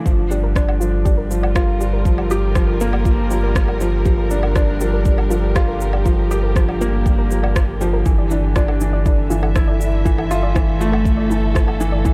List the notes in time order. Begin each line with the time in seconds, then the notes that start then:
Already playing: D4
0.06 G1 D3 F3 F4, kick, shaker
0.28 G3 D4 G4, shaker
0.43 A#4
0.55 D4, kick, cross-stick, shaker
0.68 D5, low woodblock
0.80 F3 F4, shaker
1.05 D4 G4, kick, shaker
1.17 A#4
1.28 F3 F4, shaker
1.43 A#4 D5, low woodblock
1.55 F4, kick, cross-stick, shaker
1.80 G4, shaker
1.93 A#4
2.05 F3, kick, shaker
2.18 D5, low woodblock
2.31 F4 G4, shaker
2.55 F3 G4, kick, cross-stick, shaker
2.68 A#4
2.81 A#3, shaker
2.93 D5, low woodblock
3.05 F4, kick, shaker
3.31 F3 G4, shaker
3.43 A#4
3.55 kick, cross-stick, shaker
3.68 D5, low woodblock
3.80 F3 F4, shaker
4.05 F3 G4, kick, shaker
4.18 A#4
4.31 D4, shaker
4.43 D5, low woodblock
4.55 D4 F4 G4, kick, cross-stick, shaker
4.81 F3 G4, shaker
4.93 A#4
5.05 D4, kick, shaker
5.18 D5, low woodblock
5.30 F3 F4, shaker
5.56 F4 G4, kick, cross-stick, shaker
5.68 A#4
5.81 shaker
5.93 D5, low woodblock
6.06 F3 F4, kick, shaker
6.31 G4, shaker
6.43 A#4
6.56 F3, kick, cross-stick, shaker
6.68 D5, low woodblock
6.81 A#3 F4, shaker
7.06 G4, kick, shaker
7.18 A#4
7.31 F3, shaker
7.43 D5, low woodblock
7.56 F4, kick, cross-stick, shaker
7.81 F3 G4, shaker
7.93 A#4
8.06 G1 E3, kick, shaker
8.18 D5
8.31 D4 E4, shaker
8.56 D4 F4, kick, cross-stick, shaker
8.68 A4, low woodblock
8.81 E3, shaker
8.93 D5
9.06 D4 E4, kick, shaker
9.18 E5
9.30 E3 F4, shaker
9.42 A4, low woodblock
9.56 E4, kick, cross-stick, shaker
9.68 D5
9.80 E4, shaker
9.90 A4
10.05 E3 F4, kick, shaker
10.18 A4, low woodblock
10.31 F4, shaker
10.43 D5
10.55 E3 E4, kick, cross-stick, shaker
10.80 A3 F4, shaker
10.92 A4, low woodblock
11.05 kick, shaker
11.17 D5
11.30 E3 E4, shaker
11.55 F4, kick, cross-stick, shaker
11.67 A4, low woodblock
11.81 E3, shaker
11.92 D5
12.05 E3 E4, kick, shaker